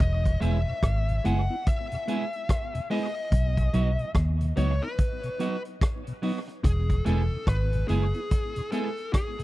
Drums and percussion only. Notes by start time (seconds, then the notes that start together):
0.00 kick, closed hi-hat
0.26 kick, closed hi-hat
0.42 closed hi-hat
0.83 kick, cross-stick, closed hi-hat
1.09 closed hi-hat
1.25 closed hi-hat
1.66 kick, closed hi-hat
1.92 closed hi-hat
2.08 closed hi-hat
2.33 closed hi-hat
2.49 kick, cross-stick, closed hi-hat
2.75 closed hi-hat
2.90 open hi-hat
3.32 kick, closed hi-hat
3.57 kick, closed hi-hat
3.74 closed hi-hat
3.99 closed hi-hat
4.15 kick, cross-stick, closed hi-hat
4.41 closed hi-hat
4.57 closed hi-hat
4.98 kick, closed hi-hat
5.23 closed hi-hat
5.40 closed hi-hat
5.65 closed hi-hat
5.81 kick, cross-stick, closed hi-hat
6.07 closed hi-hat
6.23 open hi-hat
6.49 closed hi-hat
6.64 kick, closed hi-hat
6.90 kick, closed hi-hat
7.06 closed hi-hat
7.47 kick, cross-stick, closed hi-hat
7.73 closed hi-hat
7.89 closed hi-hat
8.14 closed hi-hat
8.31 kick, closed hi-hat
8.56 closed hi-hat
8.72 closed hi-hat
8.97 closed hi-hat
9.14 kick, cross-stick, closed hi-hat
9.39 closed hi-hat